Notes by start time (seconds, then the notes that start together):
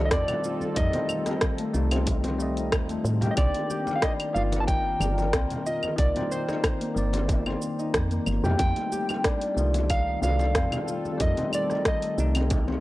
Already playing: C2 D#3 G3 A3 A#3 C4 D4 D#4 F4 G4 A4
0.05 D#5
0.11 F2 C4 D5, kick, cross-stick, open hi-hat, cabasa
0.28 open hi-hat, low conga, cabasa, claves
0.44 F4, cabasa
0.61 high conga, cabasa
0.75 F2 D#3 G3 A3 D#4 D#5, kick, open hi-hat, cabasa
0.93 C4, open hi-hat, muted conga, low conga
1.09 high conga, cabasa, claves
1.26 D#4, cross-stick, open hi-hat, muted conga, cabasa
1.41 kick, cross-stick, open hi-hat, cabasa
1.58 A3, open hi-hat
1.74 C2 G3 A3 D#4, cabasa
1.91 C4, open hi-hat, muted conga, cabasa, claves
2.06 kick, open hi-hat, low conga, cabasa
2.24 C4, open hi-hat, muted conga, high conga, cabasa
2.38 G3 A3, cabasa
2.42 D#5
2.57 D#4, open hi-hat, cabasa
2.72 D#2, kick, cross-stick, open hi-hat, high conga, cabasa, claves
2.89 A3, open hi-hat, cabasa
3.04 A2, muted conga, high conga, cabasa
3.21 G4, open hi-hat, low conga, cabasa
3.31 D#5
3.36 C2 D#3 A#3 C4 D4 D5, kick, open hi-hat, cabasa, claves
3.55 open hi-hat, muted conga
3.70 G4, high conga, cabasa
3.87 muted conga, cabasa
3.94 A#4 F5
4.02 D4 D#5, kick, cross-stick, open hi-hat, cabasa
4.20 open hi-hat, claves
4.33 G1 D#3 A#3 F4 F5, cabasa
4.37 D5
4.52 open hi-hat, muted conga, cabasa
4.60 A5
4.67 D#4 G5, kick, open hi-hat, cabasa
5.00 G1 D4, muted conga, high conga, cabasa, claves
5.18 muted conga, cabasa
5.33 C2 C4, kick, cross-stick, open hi-hat, cabasa
5.50 open hi-hat, low conga, cabasa
5.66 F4 D#5, cabasa
5.83 high conga, cabasa, claves
5.96 C2 D#3 A#3 D#4 D5, kick, open hi-hat, cabasa
6.16 C4, open hi-hat, muted conga, low conga
6.32 C5, cabasa
6.49 D#4, cross-stick, muted conga, cabasa
6.64 kick, cross-stick, open hi-hat, cabasa, claves
6.81 A#3, open hi-hat
6.94 G1 D#3 A#3, cabasa
6.98 D5
7.13 C4, open hi-hat, muted conga, cabasa
7.28 kick, open hi-hat, low conga, cabasa
7.46 C4, muted conga, high conga, claves
7.62 cabasa
7.79 D#4, cabasa
7.94 F2, kick, cross-stick, open hi-hat, high conga, cabasa
8.11 A#3, open hi-hat, cabasa
8.26 G1, muted conga, cabasa, claves
8.44 F2 G4, low conga, cabasa
8.58 F2 G3 A3 C4 G5, kick, open hi-hat, cabasa
8.62 D#4
8.76 open hi-hat, muted conga
8.89 G3 G4, high conga, cabasa
9.09 muted conga, cabasa, claves
9.24 D4, kick, cross-stick, open hi-hat, cabasa
9.41 open hi-hat
9.55 C2 G3 A3 F4, cabasa
9.59 D#3
9.66 A4
9.74 open hi-hat, muted conga, cabasa
9.90 D#4 F5, kick, open hi-hat, cabasa, claves
10.22 C2 D4 F5, muted conga, high conga, cabasa
10.39 muted conga, cabasa
10.55 F2 C4, kick, cross-stick, open hi-hat, cabasa
10.72 open hi-hat, low conga, cabasa, claves
10.88 F4, cabasa
11.05 high conga, cabasa
11.18 F2 G3 A3 D#4 D#5, kick, open hi-hat, cabasa
11.22 D#3
11.37 C4, open hi-hat, muted conga, low conga
11.52 D5, high conga, cabasa, claves
11.70 D#4, cross-stick, muted conga, cabasa
11.85 D#5, kick, cross-stick, open hi-hat, cabasa
12.02 A3, open hi-hat
12.18 C2 G3 A3 D#4, cabasa
12.35 C4, open hi-hat, muted conga, cabasa, claves
12.50 kick, open hi-hat, low conga, cabasa
12.67 C4, muted conga, high conga